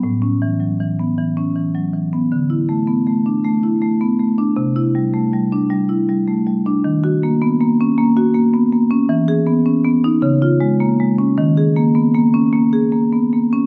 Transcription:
marimba
0.03 A2
0.22 C#4
0.42 E3
0.60 F#3
0.80 E3
0.99 B3
1.18 E3
1.37 C#4
1.56 E3
1.74 F#3
1.93 E3
2.13 B3
2.32 D3
2.50 E4
2.69 A3
2.87 B3
3.07 A3
3.26 D4
3.45 A3
3.64 E4
3.82 A3
4.01 B3
4.19 A3
4.38 D4
4.57 C3
4.76 E4
4.95 G3
5.14 A3
5.33 G3
5.52 D4
5.70 G3
5.89 E4
6.09 G3
6.27 A3
6.47 G3
6.66 D4
6.84 D#3
7.04 F#4
7.23 A#3
7.42 B3
7.61 A#3
7.81 C#4
7.98 A#3
8.17 F#4
8.35 A#3
8.54 B3
8.72 A#3
8.91 C#4
9.09 E3
9.28 G#4
9.46 B3
9.66 C#4
9.85 B3
10.04 D#4
10.22 C#3
10.42 F4
10.61 G#3
10.80 A#3
11.00 G#3
11.19 C#4
11.38 D#3
11.57 G#4
11.76 A#3
11.95 B3
12.14 A#3
12.34 C#4
12.53 A#3
12.73 G#4
12.92 A#3
13.13 B3
13.33 A#3
13.53 C#4

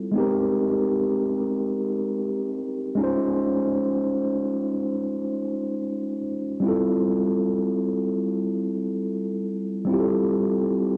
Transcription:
tine electric piano
Already playing: C4 E4 F4 A4
0.12 G#3 B3
0.16 D#4 G4
0.20 C4 A#4
2.95 G#3 C#4
2.99 D#4 F4
3.04 C5
6.60 G3 C4
6.64 E4 F4
6.68 A4
9.85 G3 C4
9.89 E4 F4
9.93 G4
10.00 A4

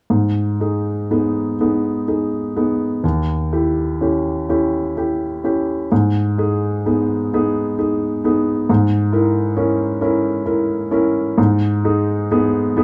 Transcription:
grand piano
0.10 G#2
0.60 D#4 G#4
1.11 B3 D#4 G#4
1.60 B3 D#4 G#4
2.08 D#4 G#4
2.57 B3 D#4 G#4
3.04 D#2
3.53 E4 G4
4.01 C#4 E4 G4
4.49 C#4 E4 G4
4.97 E4 G4
5.44 C#4 E4 G4
5.92 G#2
6.38 D#4 G#4
6.86 B3 D#4 G#4
7.33 B3 D#4 G#4
7.79 D#4 G#4
8.24 B3 D#4 G#4
8.69 G#2
9.13 E4 A#4
9.57 C#4 E4 A#4
10.01 C#4 E4 A#4
10.46 E4 A#4
10.91 C#4 E4 A#4
11.38 G#2
11.85 D#4 G#4
12.31 B3 D#4 G#4
12.77 B3 D#4 G#4

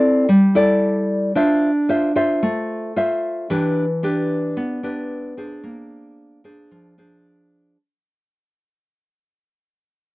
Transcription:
nylon-string guitar
Already playing: C4 E4 A4 D5
0.29 G3
0.55 E4 A4 D5
1.35 D4 F4 C5 E5
1.89 F4 C5 E5
2.16 F4 C5 E5
2.43 A3
2.96 F4 C5 E5
3.50 E3 D4 G4 B4
4.03 D4 G4 B4
4.57 B3
4.83 D4 G4 B4
5.37 D4 G#4 C5
5.64 A#3
6.44 D4 G#4 C5
6.71 F3
6.98 D4 G#4 C5

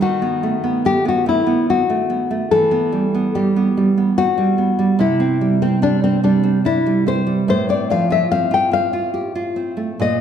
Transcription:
nylon-string guitar
0.01 D#3 F#4
0.22 B3
0.43 A3
0.64 B3
0.85 A3 G4
1.05 B3 F#4
1.26 A3 E4
1.47 B3
1.70 C4 F#4
1.90 A3
2.10 B3
2.31 A3
2.51 E3 A4
2.71 B3
2.92 G3
3.15 B3
3.35 G3 G4
3.56 B3
3.77 G3
3.97 B3
4.18 C4 F#4
4.38 G3
4.58 B3
4.79 G3
4.99 C3 E4
5.20 C4
5.41 G3
5.62 C4
5.82 G3 D4
6.04 C4
6.24 G3 D4
6.43 C4
6.65 D4 E4
6.86 G3
7.07 C4 C5
7.27 G3
7.48 A2 C5
7.69 C4 D5
7.90 F3 F5
8.10 F4 E5
8.32 C4 F5
8.51 F4 G5
8.71 C4 F5
8.93 F4
9.14 G4
9.35 F4
9.56 C4
9.77 A3
10.00 A#2 D#5

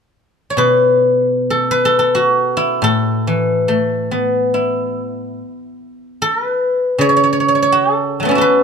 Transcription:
guzheng
0.50 C#5
0.57 B2 B4
1.50 A4
1.71 B4
1.85 A4
1.99 A4
2.15 F#4
2.57 E4
2.82 A2 A4
3.27 E3
3.68 A3
4.11 B3
4.54 E4
6.22 A4
6.45 B4
6.98 C#3 C#5
7.09 C#5
7.17 C#5
7.24 C#5
7.33 C#5
7.40 C#5
7.48 C#5
7.55 C#5
7.62 C#5
7.72 F#4
7.93 A4
8.20 F#3 A3
8.25 B3 C#4
8.31 E4
8.35 F#4 A4
8.41 B4

